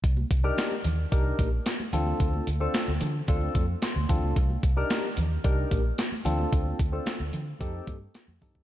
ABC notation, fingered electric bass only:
X:1
M:4/4
L:1/16
Q:1/4=111
K:Cdor
V:1 name="Fingered electric bass" clef=bass
C,,2 C,,2 z2 E,,2 C,,2 B,,,2 z2 D,,2 | D,,2 D,,2 z D,, D,2 D,,2 F,,2 z D,, D,, _D,, | C,,2 C,,2 z2 E,,2 C,,2 B,,,2 z2 D,,2 | D,,2 D,,2 z D,, D,2 F,,2 G,,2 z F,, G,, ^F,, |]